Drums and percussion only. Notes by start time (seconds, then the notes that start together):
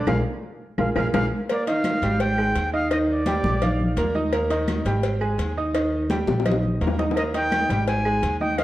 0.07 low bongo, high conga, claves
0.78 low bongo, high conga, claves
0.96 low bongo, high conga, claves
1.14 low bongo, high conga, claves
1.49 cowbell, high conga, claves
1.67 cowbell, high conga
1.84 cowbell, high conga, claves
2.02 cowbell, high conga
2.20 cowbell, high conga
2.38 high conga, claves
2.55 cowbell, high conga
2.91 cowbell, high conga, claves
3.08 high conga
3.26 cowbell, high conga
3.44 high conga
3.62 cowbell, high conga, low conga, claves
3.80 high conga, low conga
3.96 cowbell, high conga
4.15 high conga
4.32 cowbell, high conga, claves
4.50 cowbell, high conga
4.68 cowbell, high conga, claves
4.86 cowbell, high conga
5.04 cowbell, high conga
5.21 high conga, claves
5.39 cowbell, high conga
5.74 cowbell, high conga, claves
5.92 high conga
6.10 cowbell, high conga
6.27 high bongo, high conga
6.40 high bongo
6.45 cowbell, high conga, low conga, claves
6.51 high bongo
6.63 high conga, low conga
6.81 cowbell, high conga
6.87 low bongo
6.99 low bongo, high conga
7.11 low bongo
7.16 cowbell, high conga, claves
7.34 cowbell, high conga
7.52 cowbell, high conga, claves
7.70 cowbell, high conga
7.88 cowbell, high conga
8.05 high conga, claves
8.23 cowbell, high conga
8.41 high conga
8.58 cowbell, high conga, claves